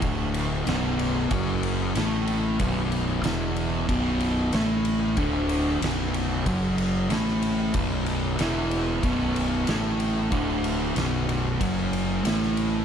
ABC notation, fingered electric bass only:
X:1
M:4/4
L:1/8
Q:1/4=93
K:Bm
V:1 name="Fingered electric bass" clef=bass
D,,,2 B,,,,2 F,,,2 A,,,2 | B,,,,2 E,,,2 B,,,,2 A,,,2 | D,,,2 B,,,,2 F,,,2 A,,,2 | B,,,,2 E,,,2 B,,,,2 A,,,2 |
D,,,2 B,,,,2 F,,,2 A,,,2 |]